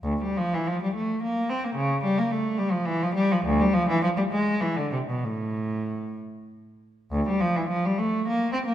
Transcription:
X:1
M:6/8
L:1/16
Q:3/8=69
K:F
V:1 name="Cello" clef=bass
D,, G, F, E, F, G, A,2 B,2 C B, | ^C,2 G, B, A,2 G, F, E, F, G, F, | [K:Am] D,, G, F, E, F, G, ^G,2 E, D, C, B,, | A,,6 z6 |
[K:Bblyd] D,, G, F, E, F, G, A,2 B,2 C B, |]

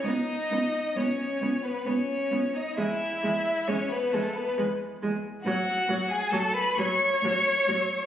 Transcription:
X:1
M:3/4
L:1/16
Q:1/4=66
K:E
V:1 name="Violin"
d4 c3 B c3 d | e4 c B A B z4 | f3 g a b c'6 |]
V:2 name="Violin"
D4 C3 B, C3 D | E4 C B, A, B, z4 | F3 G A B c6 |]
V:3 name="Viola" clef=bass
B,2 B,2 B,2 B,2 B,2 B,2 | G,2 G,2 G,2 G,2 G,2 G,2 | F,2 F,2 F,2 F,2 F,2 F,2 |]
V:4 name="Cello" clef=bass
C,,2 C,,2 C,,2 C,,2 C,,2 C,,2 | E,,2 E,,2 E,,2 E,,2 E,,2 E,,2 | A,,2 A,,2 A,,2 A,,2 A,,2 A,,2 |]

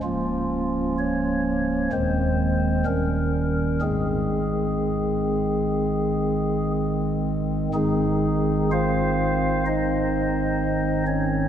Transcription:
X:1
M:4/4
L:1/8
Q:1/4=62
K:Ab
V:1 name="Pipe organ"
F2 d2 c2 B2 | A6 z2 | [A,EA]2 [Fcf]2 [Ece]3 [Dd] |]
V:2 name="Pipe organ" clef=bass
[D,,,D,,F,B,D]4 [E,,,E,,E,A,C]2 [E,,,E,,E,G,D]2 | [A,,,A,,E,A,C]8 | [A,,,A,,E,C]8 |]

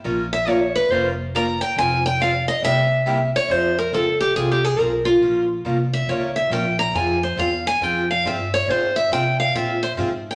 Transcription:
X:1
M:4/4
L:1/16
Q:"Swing" 1/4=139
K:Fm
V:1 name="Steel-string acoustic guitar"
z2 =e2 d2 =B2 c2 z2 _b2 g2 | a2 g2 f2 e2 =e6 d2 | c2 B2 =A2 G2 (3_A2 G2 A2 B2 F2- | F2 z4 =e2 d2 e2 g2 b2 |
a2 c2 f2 a2 g2 f2 =e2 d2 | c2 =e2 g2 f2 e2 c2 z3 g |]
V:2 name="Steel-string acoustic guitar"
[F,B,DFB]2 z2 [F,B,DFB]2 z2 [F,B,DFB]2 z2 [F,B,DFB]2 z2 | [F,CFA]2 z2 [F,CFA]2 z2 [C,G,B,=EG]2 z2 [C,G,B,EG]2 z2 | [F,CFA]2 z2 [F,CFA]2 z2 [F,CFA]2 z2 [F,CFA]2 z2 | [F,B,DFB]2 z2 [F,B,DFB]2 z2 [F,B,DFB]2 z2 [F,B,DFB]2 z2 |
[F,CFA]2 z2 [F,CFA]2 z2 [F,CFA]2 z2 [F,CFA]2 z2 | [F,CFA]2 z2 [F,CFA]2 z2 [F,CFA]2 z2 [F,CFA]2 z2 |]
V:3 name="Upright bass" clef=bass
B,,,8 F,,,8 | F,,,8 C,,8 | F,,4 D,,4 C,,4 =B,,,4 | B,,,4 C,,4 D,,4 B,,,4 |
F,,4 =E,,4 F,,4 G,,4 | A,,4 C,4 B,,4 A,,4 |]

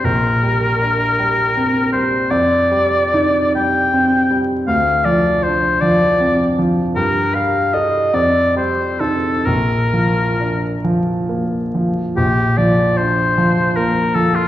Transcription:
X:1
M:6/8
L:1/16
Q:3/8=52
K:Bb
V:1 name="Oboe"
B8- B2 c2 | d6 g4- g z | f2 d2 c2 d4 z2 | B2 f2 e2 d2 c2 A2 |
B6 z6 | G2 d2 c4 B2 A F |]
V:2 name="Grand piano" clef=bass
B,,,2 G,2 D2 G,2 C2 G,2 | F,,2 G,2 E2 G,2 C2 G,2 | D,,2 F,2 D2 F,2 C2 F,2 | G,,2 G,2 [DA]2 F,,2 G,2 [EA]2 |
B,,,2 F,2 D2 F,2 B,2 F,2 | B,,,2 F,2 D2 F,2 B,2 F,2 |]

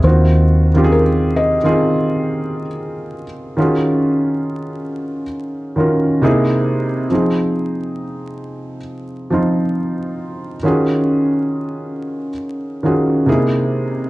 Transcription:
X:1
M:4/4
L:1/16
Q:"Swing 16ths" 1/4=68
K:Ebdor
V:1 name="Felt piano"
c4 B2 e6 z4 | z16 | z16 | z16 |]
V:2 name="Upright piano"
[E,CFG]3 [E,CF=GA]4 [E,CFA]6- [E,CFA] z2 | [E,DFGA]6- [E,DFGA] z3 [E,DFGB]2 [C,B,^D=E^G]4 | [F,CEA]6- [F,CEA] z3 [F,CEF]6 | [E,DFGA]6- [E,DFGA] z3 [E,DFGA]2 [C,B,^D=E^G]4 |]
V:3 name="Fingered electric bass" clef=bass
E,,6- E,, z8 z | z16 | z16 | z16 |]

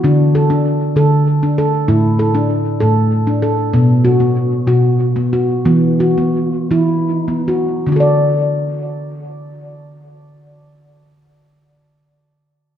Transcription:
X:1
M:6/8
L:1/16
Q:3/8=60
K:D
V:1 name="Handpan"
D2 A D2 z A2 z D A2 | E2 A D2 z A2 z D A2 | B,2 F B,2 z F2 z B, F2 | B,2 F B,2 z E2 z B, F2 |
z12 | z12 |]
V:2 name="Handpan" clef=bass
D,6 D,6 | A,,6 A,,6 | B,,6 B,,6 | E,6 E,6 |
[D,DFAd]12- | [D,DFAd]12 |]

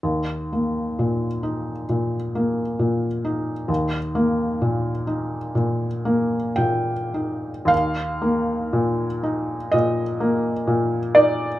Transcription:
X:1
M:4/4
L:1/8
Q:1/4=63
K:Eb
V:1 name="Felt piano"
z8 | z6 g2 | f4 e3 d |]
V:2 name="Felt piano" clef=bass
E,, B, B,, E B,, B, B,, E | E,, B, B,, E B,, B, B,, E | E,, B, B,, E B,, B, B,, E |]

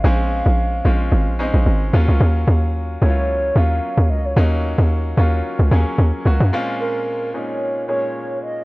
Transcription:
X:1
M:4/4
L:1/16
Q:"Swing 16ths" 1/4=111
K:Bbm
V:1 name="Soft synth lead"
f8- f3 z4 z | z6 d4 f4 e d- | d3 z12 z | z2 B4 d4 d4 e2 |]
V:2 name="Grand piano"
[A,CDA]4 z2 [A,CDF]4 [A,CDE]4 [G,B,DF]2- | [G,B,DF]4 z2 [G,B,D=EF]4 [G,B,DF]4 z2 | [G,B,DE]4 z2 [G,B,DF]4 [G,B,DA]4 [G,B,DG]2 | [B,,A,CDF]4 z2 [B,,A,B,DE]4 [B,,A,B,DA]4 z2 |]
V:3 name="Log drum bass" clef=bass
B,,,3 B,,,3 B,,,2 A,,, B,,,2 B,,, A,,,2 E,, D,, | E,,2 E,,4 D,,4 E,,2 z E,, D,,2 | E,,3 E,,3 E,,2 z D,, E,, z E,, z D,, G,, | z16 |]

